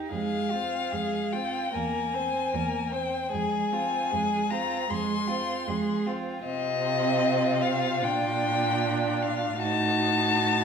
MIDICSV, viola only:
0, 0, Header, 1, 2, 480
1, 0, Start_track
1, 0, Tempo, 807537
1, 71, Time_signature, 4, 2, 24, 8
1, 1512, Tempo, 783290
1, 6474, End_track
2, 0, Start_track
2, 0, Title_t, "Viola"
2, 0, Program_c, 0, 41
2, 0, Note_on_c, 0, 63, 32
2, 67, Note_off_c, 0, 63, 0
2, 70, Note_on_c, 0, 56, 35
2, 317, Note_on_c, 0, 60, 34
2, 325, Note_off_c, 0, 56, 0
2, 555, Note_on_c, 0, 56, 35
2, 564, Note_off_c, 0, 60, 0
2, 799, Note_on_c, 0, 60, 33
2, 808, Note_off_c, 0, 56, 0
2, 1027, Note_off_c, 0, 60, 0
2, 1030, Note_on_c, 0, 58, 36
2, 1268, Note_on_c, 0, 60, 30
2, 1277, Note_off_c, 0, 58, 0
2, 1503, Note_on_c, 0, 58, 32
2, 1512, Note_off_c, 0, 60, 0
2, 1741, Note_on_c, 0, 60, 34
2, 1750, Note_off_c, 0, 58, 0
2, 1987, Note_off_c, 0, 60, 0
2, 1989, Note_on_c, 0, 56, 38
2, 2236, Note_on_c, 0, 60, 36
2, 2245, Note_off_c, 0, 56, 0
2, 2477, Note_on_c, 0, 56, 37
2, 2486, Note_off_c, 0, 60, 0
2, 2718, Note_on_c, 0, 60, 35
2, 2728, Note_off_c, 0, 56, 0
2, 2948, Note_off_c, 0, 60, 0
2, 2952, Note_on_c, 0, 56, 42
2, 3193, Note_on_c, 0, 60, 36
2, 3202, Note_off_c, 0, 56, 0
2, 3426, Note_on_c, 0, 56, 39
2, 3435, Note_off_c, 0, 60, 0
2, 3665, Note_on_c, 0, 60, 39
2, 3674, Note_off_c, 0, 56, 0
2, 3902, Note_off_c, 0, 60, 0
2, 3906, Note_on_c, 0, 60, 47
2, 4866, Note_on_c, 0, 62, 51
2, 4875, Note_off_c, 0, 60, 0
2, 5834, Note_off_c, 0, 62, 0
2, 5838, Note_on_c, 0, 63, 50
2, 6474, Note_off_c, 0, 63, 0
2, 6474, End_track
0, 0, End_of_file